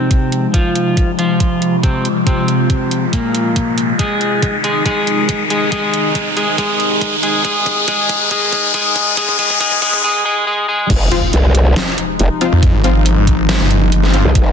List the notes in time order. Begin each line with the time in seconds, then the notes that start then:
Already playing: C3 F3 G#3 C4 D#4, riser
0.11 kick, closed hi-hat
0.32 closed hi-hat
0.54 F3 F4, kick, closed hi-hat
0.76 closed hi-hat
0.97 kick, closed hi-hat
1.19 F3 F4, closed hi-hat
1.40 kick, closed hi-hat
1.62 closed hi-hat
1.83 C3 C4, kick, closed hi-hat
2.05 closed hi-hat
2.26 C3 C4, kick, closed hi-hat
2.48 closed hi-hat
2.70 kick, closed hi-hat
2.91 closed hi-hat
3.13 A#2 A#3, kick, closed hi-hat
3.35 closed hi-hat
3.56 kick, closed hi-hat
3.78 closed hi-hat
3.99 C3 D#3 G#3 D#4 G#4, kick, closed hi-hat
4.21 closed hi-hat
4.42 kick, closed hi-hat
4.64 G#3 G#4, closed hi-hat
4.86 G#3 G#4, kick, closed hi-hat
5.07 closed hi-hat
5.29 kick, closed hi-hat
5.50 G#3 G#4, closed hi-hat
5.72 G#3 G#4, kick, closed hi-hat
5.94 closed hi-hat
6.15 kick, closed hi-hat
6.37 G#3 G#4, closed hi-hat
6.58 G#3 G#4, kick, closed hi-hat
6.80 closed hi-hat
7.01 kick, closed hi-hat
7.23 G#3 G#4, closed hi-hat
7.44 G#3 G#4, kick, closed hi-hat
7.66 kick, closed hi-hat
7.88 G#3 G#4, kick, closed hi-hat
8.09 kick, closed hi-hat
8.31 G#3 G#4, kick, closed hi-hat
8.53 kick, closed hi-hat
8.74 G#3 G#4, kick, closed hi-hat
8.96 kick, closed hi-hat
9.17 G#3 G#4, kick, closed hi-hat
9.29 kick
9.39 G#3 G#4, kick, closed hi-hat
9.50 kick
9.60 G#3 G#4, kick, closed hi-hat
9.72 kick
9.82 G#3 G#4, kick, closed hi-hat
9.93 kick
10.04 G#3 G#4
10.25 G#3 G#4
10.47 G#3 G#4
10.68 G#3 G#4
10.90 F1 C3 F3 G#3 D#4, kick, closed hi-hat, crash, impact
11.12 F3 C4 F4, closed hi-hat
11.33 C2, closed hi-hat
11.55 closed hi-hat
11.76 snare, closed hi-hat
11.98 closed hi-hat
12.19 F1, closed hi-hat
12.41 F3 C4 F4, closed hi-hat
12.52 F2
12.63 kick, closed hi-hat
12.74 G#1
12.84 F3 C4 F4, closed hi-hat
13.06 closed hi-hat
13.27 kick, closed hi-hat
13.49 snare, closed hi-hat
13.60 G1
13.71 closed hi-hat
13.92 closed hi-hat
14.03 snare
14.14 F3 C4 F4, closed hi-hat
14.25 C2
14.35 F1 F4, kick, closed hi-hat